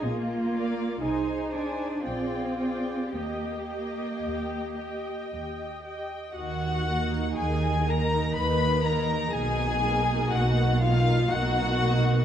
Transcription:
<<
  \new Staff \with { instrumentName = "Violin section" } { \time 3/4 \key ees \major \tempo 4 = 60 r8 f''8 aes''8 aes''8 g''8 g''8 | g''8 g''4 g''4 g''8 | \key ees \minor ges''4 aes''8 bes''8 ces'''8 bes''8 | aes''4 fis''8 f''8 fis''4 | }
  \new Staff \with { instrumentName = "Viola section" } { \time 3/4 \key ees \major r8 <bes' d''>8 <aes' c''>8 <aes' c''>8 <aes' d''>8 <aes' d''>8 | <g' ees''>8 <g' ees''>4 <g' ees''>4 <g' ees''>8 | \key ees \minor r8 <bes ees'>4 <bes ees'>4 <bes ees'>8 | <ais dis'>8 <ais dis'>4 <ais dis'>4 <ais dis'>8 | }
  \new Staff \with { instrumentName = "Violin section" } { \time 3/4 \key ees \major f'4 ees'4 f'4 | g'2~ g'8 r8 | \key ees \minor ges'4 aes'8 bes'8 ces''8 bes'8 | aes'4 fis'8 f'8 fis'4 | }
  \new Staff \with { instrumentName = "Cello section" } { \clef bass \time 3/4 \key ees \major bes4 ees'8 d'8 c'4 | bes2 r4 | \key ees \minor ees4 ees4 ees4 | b,4 b,4 b,4 | }
  \new Staff \with { instrumentName = "Double bass section" } { \clef bass \time 3/4 \key ees \major bes,,4 c,4 bes,,4 | ees,4 ees,4 ees,4 | \key ees \minor ees,4 ees,4 ees,4 | b,,4 b,,4 b,,4 | }
>>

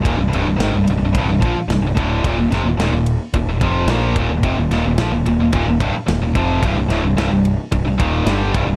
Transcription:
<<
  \new Staff \with { instrumentName = "Distorted electric guitar" } { \clef bass \time 4/4 \key c \minor \tempo 4 = 109 <ees, bes,>16 <c, g,>16 <c, g,>16 <c, g,>16 <aes, ees>16 <c, g,>16 <c, g,>16 <c, g,>16 <c, g,>16 <c, g,>16 <bes, f>16 r16 <c, g,>16 <c, g,>16 <d, a, d>8 | <ees, bes,>16 <ees, bes,>16 <f, c>16 <ees, bes,>16 <ees, bes,>16 <ees, bes,>8 r16 <ees, bes,>16 <ees, bes,>16 <f, c f>8 <bes, f bes>8 <ees, bes,>16 <ees, bes,>16 | <f, c>16 <ees, bes,>16 <ees, bes,>16 <ees, bes,>16 <bes, f>16 <ees, bes,>16 <ees, bes,>16 <ees, bes,>16 <ees, bes,>16 <ees, bes,>16 <c, g,>16 r16 <ees, bes,>16 <ees, bes,>16 <f, c f>8 | <c, g,>16 <c, g,>16 <d, a,>16 <c, g,>16 <c, g,>16 <c, g,>8 r16 <c, g,>16 <c, g,>16 <ees, bes, ees>8 <g, d g>8 <c, g,>16 <c, g,>16 | }
  \new Staff \with { instrumentName = "Distorted electric guitar" } { \clef bass \time 4/4 \key c \minor <ees, bes,>16 <c, g,>16 <c, g,>16 <c, g,>16 <aes, ees>16 <c, g,>16 <c, g,>16 <c, g,>16 <c, g,>16 <c, g,>16 <bes, f>16 r16 <c, g,>16 <c, g,>16 <d, a, d>8 | <ees, bes,>16 <ees, bes,>16 <f, c>16 <ees, bes,>16 <ees, bes,>16 <ees, bes,>8 r16 <ees, bes,>16 <ees, bes,>16 <f, c f>8 <bes, f bes>8 <ees, bes,>16 <ees, bes,>16 | <f, c>16 <ees, bes,>16 <ees, bes,>16 <ees, bes,>16 <bes, f>16 <ees, bes,>16 <ees, bes,>16 <ees, bes,>16 <ees, bes,>16 <ees, bes,>16 <c, g,>16 r16 <ees, bes,>16 <ees, bes,>16 <f, c f>8 | <c, g,>16 <c, g,>16 <d, a,>16 <c, g,>16 <c, g,>16 <c, g,>8 r16 <c, g,>16 <c, g,>16 <ees, bes, ees>8 <g, d g>8 <c, g,>16 <c, g,>16 | }
  \new Staff \with { instrumentName = "Picked electric bass" } { \clef bass \time 4/4 \key c \minor ees,,16 c,,16 c,,16 c,,16 aes,,16 c,,16 c,,16 c,,16 c,,16 c,,16 bes,,16 r16 c,,16 c,,16 d,,8 | ees,,16 ees,,16 f,,16 ees,,16 ees,,16 ees,,8 r16 ees,,16 ees,,16 f,,8 bes,,8 ees,,16 ees,,16 | f,,16 ees,,16 ees,,16 ees,,16 bes,,16 ees,,16 ees,,16 ees,,16 ees,,16 ees,,16 c,,16 r16 ees,,16 ees,,16 f,,8 | c,,16 c,,16 d,,16 c,,16 c,,16 c,,8 r16 c,,16 c,,16 ees,,8 g,,8 c,,16 c,,16 | }
  \new DrumStaff \with { instrumentName = "Drums" } \drummode { \time 4/4 <bd cymr>8 cymr8 <cymr sn>8 cymr8 <bd cymr>8 <bd cymr>8 <cymr sn>8 <bd cymr>8 | <bd cymr>8 <cymr sn>8 <cymr sn>8 cymr8 <bd cymr>8 <bd cymr>8 <cymr sn>8 <bd cymr>8 | <bd cymr>8 <cymr sn>8 <cymr sn>8 cymr8 <bd cymr>8 <bd cymr>8 <cymr sn>8 <bd cymr>8 | <bd cymr>8 <cymr sn>8 <cymr sn>8 cymr8 <bd cymr>8 <bd cymr>8 <cymr sn>8 <bd cymr>8 | }
>>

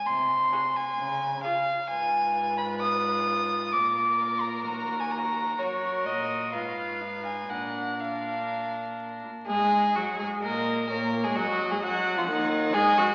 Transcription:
<<
  \new Staff \with { instrumentName = "Violin" } { \time 4/4 \key des \major \tempo 4 = 129 c'''4. aes''4. f''4 | \key ees \minor aes''4. ces'''8 ees'''2 | d'''4. bes''8 bes''8. aes''16 bes''4 | des''4 ees''4 f''4. aes''8 |
ges''4 f''2 r4 | r2 ees''4 des''4 | ees''4 ges''2 ees''4 | }
  \new Staff \with { instrumentName = "Violin" } { \time 4/4 \key des \major r4 aes'4 r4 aes'4 | \key ees \minor ces''1 | bes'1 | bes'2 ces''2 |
bes'4 bes'2~ bes'8 r8 | aes'4 ges'8 aes'8 bes'4 bes'8. aes'16 | ges'8. aes'16 ges'8. f'16 ees'4 aes'8 ges'8 | }
  \new Staff \with { instrumentName = "Viola" } { \time 4/4 \key des \major r4 ges'4 r4 f'4 | \key ees \minor f'1~ | f'2 ges'2 | ges'2 f'4 ees'4 |
d'4 d'2~ d'8 r8 | aes4 ges8 aes8 bes4 bes8. aes16 | ges8. aes16 ges8. f16 ees4 aes8 ges8 | }
  \new Staff \with { instrumentName = "Cello" } { \clef bass \time 4/4 \key des \major c4 r4 des4 r4 | \key ees \minor aes,1 | bes,2 ees,2 | ges,4 bes,4 aes,2 |
bes,2.~ bes,8 r8 | aes,4 ges,8 aes,8 bes,4 bes,8. aes,16 | ges,8. aes,16 ges,8. f,16 ees,4 aes,8 ges,8 | }
>>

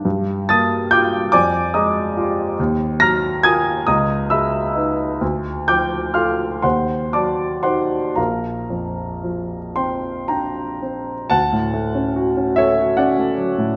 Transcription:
<<
  \new Staff \with { instrumentName = "Grand piano" } { \time 6/8 \key bes \major \tempo 4. = 46 r8 <a'' ees''' a'''>8 <g'' d''' g'''>8 <d'' aes'' d'''>8 <ees'' bes'' ees'''>4 | r8 <bes'' f''' bes'''>8 <aes'' ees''' aes'''>8 <ees'' bes'' ees'''>8 <fes'' ces''' fes'''>4 | r8 <g'' d''' g'''>8 <f'' c''' f'''>8 <c'' ges'' c'''>8 <d'' a'' d'''>8 <c'' ges'' c'''>8 | <bes' f'' bes''>4. <g'' c'''>8 <g'' bes''>4 |
\key d \major <fis'' a''>4. <cis'' e''>8 <d'' fis''>4 | }
  \new Staff \with { instrumentName = "Grand piano" } { \time 6/8 \key bes \major g,8 bes8 <f' g'>8 f,8 aes8 <f' g'>8 | ees,8 ges8 <f' bes'>8 des,8 aes8 <ees' ces''>8 | d,8 f8 <f' a'>8 ees,8 ges8 <ees' ges'>8 | bes,,8 f,8 f8 c'8 d'8 c'8 |
\key d \major d,16 a,16 a16 cis'16 fis'16 cis'16 a'16 fis'16 cis'16 a16 fis16 a,16 | }
>>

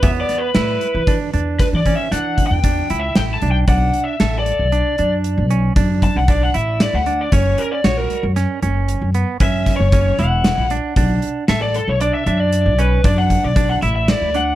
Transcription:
<<
  \new Staff \with { instrumentName = "Lead electric guitar" } { \time 7/4 \key b \minor \tempo 4 = 115 \tuplet 3/2 { e''8 d''8 b'8~ } b'4~ b'16 r8. \tuplet 3/2 { b'8 d''8 e''8 fis''4 g''8~ g''4 e''8 g''8 a''8 g''8 } | \tuplet 3/2 { fis''4 e''8~ e''8 d''4~ } d''8. r4. r16 a''16 fis''16 d''16 fis''16 e''8 d''16 fis''8 d''16 | cis''8 ais'16 d''16 cis''16 ais'8 r2 r16 \tuplet 3/2 { e''4 cis''8~ } cis''8 fis''4 r8 | r4 e''16 d''16 a'16 cis''16 d''16 e''16 e''16 d''8. b'8 d''16 fis''8 d''8 fis''16 e''16 e''16 d''8 fis''8 | }
  \new Staff \with { instrumentName = "Clean electric guitar" } { \time 7/4 \key b \minor b4 e'4 d'8 d'4 cis'8 d'4 d'8 e'4 d'8 | d'4 a'4 d'8 d'4 cis'8 d'4 d'8 e'4 d'8 | cis'4 fis'4 cis'8 cis'4 b8 cis'4 cis'8 e'4 d'8 | d'4 a'4 d'8 d'4 cis'8 d'4 d'8 e'4 d'8 | }
  \new Staff \with { instrumentName = "Upright bass" } { \clef bass \time 7/4 \key b \minor e,8 r8 a,8 r16 e8 r16 e,8. e8 r16 e8. e,8. cis,8 a,,8 b,,8 | b,,8 r8 a,,8. b,,8 r16 fis,8. b,,8. fis,8. b,,8. a,,8. d,8. | fis,,8 r8 ais,,8 r16 fis,8 r16 fis,,8. fis,8 r16 fis,8. fis,,8. e,,8. ais,,8 r16 | b,,8 r8 a,,8. b,,8 r16 fis,8. b,,8. fis,8. b,,8. a,,8. d,8. | }
  \new DrumStaff \with { instrumentName = "Drums" } \drummode { \time 7/4 <hh bd>8 <hh sn>8 <hh sn>8 hh8 <hh bd>8 hh8 <hh bd sn>8 <hh bd>8 <hh sn>8 <hh bd>8 <hh bd>8 hh8 <hh sn>8 hh8 | <hh bd>8 hh8 <hh sn>8 hh8 hh8 hh8 hh8 hh8 <hh bd>8 <hh bd>8 <hh bd>8 hh8 <hh sn>8 hh8 | <hh bd>8 hh8 <hh sn>8 hh8 <hh sn>8 hh8 hh8 hh8 <hh bd>8 <hh bd sn>8 <hh bd sn>8 hh8 <hh sn>8 hh8 | <hh bd>8 hh8 <hh sn>8 hh8 hh8 hh8 hh8 hh8 <hh bd>8 <hh bd>8 <hh bd>8 hh8 <hh sn>8 hh8 | }
>>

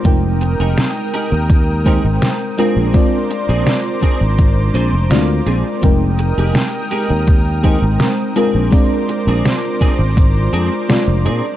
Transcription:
<<
  \new Staff \with { instrumentName = "Analog synth pad" } { \time 4/4 \key f \dorian \tempo 4 = 83 <bes' g'' ees'''>2.~ <bes' g'' ees'''>8 <c'' bes'' d'''>8~ | <c'' bes'' d'''>1 | <bes' g'' ees'''>2.~ <bes' g'' ees'''>8 <c'' bes'' d'''>8~ | <c'' bes'' d'''>1 | }
  \new Staff \with { instrumentName = "Clean electric guitar" } { \time 4/4 \key f \dorian << { r1 | r2 r8 c''8 f''4 | r1 | r1 | } \\ { r8. <ees' g' aes' bes'>16 r8 <ees' g' aes' bes'>16 r8. <ees' g' aes' bes'>16 r8. <c' d' aes'>8~ | <c' d' aes'>16 r8 <c' d' aes'>16 r8 <c' d' aes'>16 r8. <c' d' aes'>16 r8. <c' d' aes'>16 r16 | r8. <bes ees' g' aes'>16 r8 <bes ees' g' aes'>16 r8. <bes ees' g' aes'>16 r8. <c' d' aes'>8~ | <c' d' aes'>16 r8 <c' d' aes'>16 r8 <c' d' aes'>16 r8. <c' d' aes'>16 r8. <c' d' aes'>16 r16 | } >> }
  \new Staff \with { instrumentName = "FM electric piano" } { \time 4/4 \key f \dorian <aes c' ees' bes' g''>2~ <aes c' ees' bes' g''>8 <aes c' ees' c'' g''>4 <aes c' d' f' bes'>8 | <aes c' d' f' d''>2. <aes c' d' f' d''>4 | <aes c' ees' bes' g''>2~ <aes c' ees' bes' g''>8 <aes c' ees' c'' g''>4 <aes c' d' f' bes'>8 | <aes c' d' f' d''>2. <aes c' d' f' d''>4 | }
  \new Staff \with { instrumentName = "Fretless electric bass" } { \clef bass \time 4/4 \key f \dorian f,,8. f,,16 r8. ees,4 aes,,16 r8. bes,,16 | r8. bes,,16 r8. aes,,8. bes,,16 f,,16 d,8 bes,,16 r16 | f,,8. f,,16 r8. ees,4 aes,,16 r8. bes,,16 | r8. bes,,16 r8. aes,,8. f,16 r8 f,,16 bes,16 r16 | }
  \new DrumStaff \with { instrumentName = "Drums" } \drummode { \time 4/4 <hh bd>8 hh16 hh16 <hh sn>8 hh8 <hh bd>8 <hh bd>8 <hh sn>8 hh8 | <hh bd>8 hh16 hh16 <hh sn>8 <hh bd>8 <hh bd>8 hh8 <hh sn>8 hh8 | <hh bd>8 hh16 hh16 <hh sn>8 hh8 <hh bd>8 <hh bd>8 <hh sn>8 hh8 | <hh bd>8 hh16 hh16 <hh sn>8 <hh bd sn>8 <hh bd>8 hh8 <hh sn>8 hh8 | }
>>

